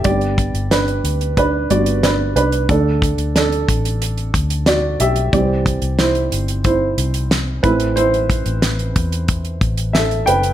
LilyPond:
<<
  \new Staff \with { instrumentName = "Upright piano" } { \time 4/4 \key g \major \tempo 4 = 91 <g' d''>4 <d' b'>4 <d' b'>8 <fis' d''>8 <d' b'>8 <d' b'>8 | a'4 <d' a'>2 <fis' d''>8 <g' e''>8 | <g' d''>4 <e' c''>4 <e' c''>4 r8 <e' b'>8 | <e' c''>2. <a' e''>8 <b' g''>8 | }
  \new Staff \with { instrumentName = "Upright piano" } { \time 4/4 \key g \major <g b d'>4. r4 <g b d'>8 r4 | <d a d'>1 | <e g c'>4. r2 <e a c'>8~ | <e a c'>2.~ <e a c'>8 r8 | }
  \new Staff \with { instrumentName = "Fingered electric bass" } { \clef bass \time 4/4 \key g \major g,,8. g,,8. d,4 g,,4 c,8 | d,8. d,8. a,,4 d,4 b,,8 | c,8. c,8. g,,4 c,4 a,,8~ | a,,8. a,,8. e,4 a,,4 fis,,8 | }
  \new DrumStaff \with { instrumentName = "Drums" } \drummode { \time 4/4 <hh bd>16 hh16 <hh bd>16 hh16 <hh sn>16 hh16 hh16 hh16 <hh bd>8 hh16 hh16 <hh sn>8 hh16 hh16 | <hh bd>8 <hh bd>16 hh16 <hh sn>16 hh16 <hh bd>16 hh16 hh16 hh16 <hh bd>16 hh16 <hh sn>8 hh16 hh16 | <hh bd>8 <hh bd>16 hh16 <hh sn>16 hh16 hh16 hh16 <hh bd>8 hh16 hh16 <hh sn>8 <hh bd>16 hh16 | hh16 hh16 <hh bd>16 hh16 <hh sn>16 hh16 <hh bd>16 hh16 <hh bd>16 hh16 <hh bd>16 hh16 <hh sn>16 hh16 hh16 hh16 | }
>>